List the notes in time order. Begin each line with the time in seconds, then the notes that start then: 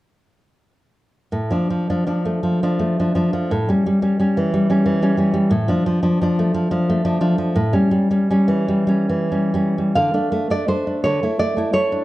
1.32 A2
1.51 F3 D4
1.70 F3
1.90 F3 D4
2.07 F3 D4
2.25 A3
2.43 F3
2.63 F3 D4
2.79 A3
3.00 F3 D4
3.15 F3 D4
3.33 F3
3.51 A2
3.69 G3 C#4
3.86 G3
4.02 G3 C#4
4.20 G3 C#4
4.37 E3
4.54 G3
4.70 G3 C#4
4.86 E3
5.02 G3 C#4
5.17 G3 C#4
5.34 G3
5.51 A2
5.68 F3 D4
5.86 F3
6.03 F3 D4
6.21 F3 D4
6.39 A3
6.54 F3
6.71 F3 D4
6.90 A3
7.05 F3 D4
7.21 F3 D4
7.38 F3
7.56 A2
7.73 G3 C#4
7.91 G3
8.11 G3 C#4
8.31 G3 C#4
8.48 E3
8.68 G3
8.87 G3 C#4
9.10 E3
9.32 G3 C#4
9.54 G3 C#4
9.78 G3
9.95 D3 F5
10.14 A3 D4
10.32 A3
10.50 A3 D4 D5
10.68 A3 D4 C5
10.87 D4
11.04 D3 C#5
11.23 A3 E4
11.39 A3 D5
11.57 A3 E4
11.73 A3 E4 C#5
11.92 D4